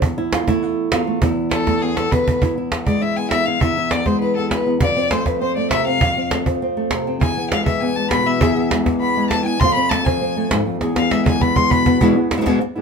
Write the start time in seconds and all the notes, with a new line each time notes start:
Already playing: E4
0.02 E2, cajon bass
0.18 E4
0.33 F4, cajon slap
0.47 A3 E4, cajon bass
0.62 F4, cajon slap
0.92 E2 F4, cajon slap
1.07 A3
1.22 E2 E4, cajon bass
1.51 A4, cajon slap
1.67 A3, cajon bass, cajon slap
1.82 B3 G#4
1.96 B3 A4, cajon slap
2.11 E2 B4, cajon bass
2.28 cajon bass
2.42 E2 E4, cajon bass
2.58 E4
2.72 B3, cajon slap
2.86 G#3 D5, cajon bass
3.02 E4 E5
3.17 B3 G#5
3.31 E2 E5, cajon slap
3.46 E4 F5
3.60 E2 E4 E5, cajon bass
3.78 E4
3.91 B3 D5, cajon slap
4.06 G#3 C5, cajon bass, cajon slap
4.21 E4 B4, cajon slap
4.37 B3 A4
4.51 B4, cajon slap
4.67 E2
4.81 F2 F4 D5, cajon bass
4.96 C4
5.11 A3 C5, cajon slap
5.26 F3 B4, cajon bass, cajon slap
5.42 C4 C5
5.56 A3 D5
5.71 C3 E5, cajon slap
5.86 C4 F5, cajon slap
6.01 F2 F4, cajon bass
6.17 C4
6.31 A3, cajon slap
6.46 F3, cajon bass
6.61 C4, cajon slap
6.77 A3
6.91 C3, cajon slap
7.07 C4
7.21 E2 G#4 G#5, cajon bass
7.37 B3
7.51 G#3 F5, cajon slap
7.66 E3 E5, cajon bass
7.81 B3 G#5
7.96 G#3 A5
8.11 B2 B5, cajon slap
8.26 B3 E5
8.41 E2 G#4, cajon bass
8.57 B3
8.71 G#3, cajon slap
8.85 E3, cajon bass, cajon slap
9.01 B3 B5, cajon slap
9.17 G#3
9.30 A5, cajon slap
9.45 E2 G#5
9.60 F2 F3 A3 C4 C6, cajon bass
9.64 F4
9.74 C4 B5
9.89 A3 A5, cajon slap
10.04 F3 G#5, cajon bass
10.21 C4, cajon slap
10.37 A3
10.51 G#2, cajon slap
10.66 F2
10.81 E2 G#4, cajon slap
10.96 B3 F5, cajon slap
11.11 G#3 E5, cajon slap
11.26 E3 G#5, cajon bass
11.41 B3 B5, cajon bass
11.55 G#3 C6, cajon bass
11.70 B2 B5, cajon bass
11.86 B3, cajon bass
12.00 E2 B2 E3 G#3 B3 E4, cajon bass
12.16 E3 G#3 B3 E4
12.31 E3 G#3 B3 E4, cajon slap
12.37 B2 E3 G#3 B3 E4
12.41 B2 E3 G#3 B3 E4
12.46 E2 B2 E3 G#3 B3 E4, cajon bass, cajon slap
12.61 muted nylon-string guitar stroke, cajon slap
12.76 E3 G#3 B3 E4